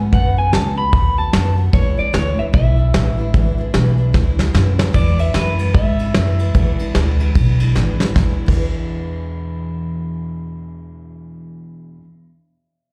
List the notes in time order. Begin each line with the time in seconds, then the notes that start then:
Already playing: G#2 F#4
0.00 A3 B3
0.13 F#2 B2 D#3 A3 B3 F#4 F#5, kick, open hi-hat
0.37 A3 B3 F#4 G#5
0.52 C#2 B2 D#3 A3 B3 F#4 A5, snare
0.77 A3 B3 F#4 B5
0.93 D#2 D#3 A3 B3 F#4, kick, open hi-hat
1.17 A3 B3 F#4 A5
1.33 F#2 B2 D#3 A3 B3 F#4, snare, open hi-hat
1.58 A3 B3 F#4
1.73 E2 B2 E3 G#3 D4 E4 C#5, kick, open hi-hat
1.97 E3 G#3 D4 E4 D5, muted upright bass stroke
2.13 D2 E2 B2 E3 G#3 D4 E4 C#5, snare, open hi-hat
2.37 E3 G#3 D4 E4 E5, muted upright bass stroke
2.54 B1 G#3 D4 E4 E5, kick, open hi-hat
2.77 E3 G#3 D4 E4
2.94 A1 E2 B2 E3 G#3 D4 E4, snare, open hi-hat
3.18 E3 G#3 D4 E4
3.34 G#1 E2 B2 E3 G#3 D4 E4, kick, open hi-hat
3.58 E3 G#3 D4 E4
3.74 B1 E2 B2 E3 G#3 D4 E4, snare
3.98 E3 G#3 D4 E4
4.13 D2 E3 G#3 D4 E4, kick, snare
4.38 E3 G#3 D4 E4, snare
4.54 E2 F#2 B2 E3 G#3 D4 E4, snare
4.78 E3 G#3 D4 E4, snare
4.93 E2 B2 E3 G#3 D4 E4 D5, kick, ride
5.18 E3 G#3 D4 E4 E5, ride
5.34 E2 F#2 B2 E3 G#3 D4 E4 B4, snare, ride
5.58 E3 G#3 D4 E4, ride
5.73 G#2 E3 G#3 D4 E4 E5, kick, ride
5.99 E3 G#3 D4 E4, ride
6.14 E2 F#2 B2 E3 G#3 D4 E4, snare, ride
6.39 E3 G#3 D4 E4, ride
6.54 E2 B2 E3 G#3 D4 E4, kick, ride
6.79 E3 G#3 D4 E4, muted upright bass stroke, ride
6.95 D2 E2 B2 E3 G#3 D4 E4, snare, ride
7.02 D5
7.20 E3 G#3 D4 E4, ride
7.35 B1 E3 G#3 D4 E4, kick, ride
7.60 E3 G#3 D4 E4, ride
7.75 G#1 E2 B2 E3 G#3 D4 E4, snare
8.00 E3 G#3 D4 E4, snare
8.14 E2 B2 E3, kick, snare
8.19 G#3 D4 E4
8.46 E2 B2 E3, kick, crash
8.52 G#3 D4 E4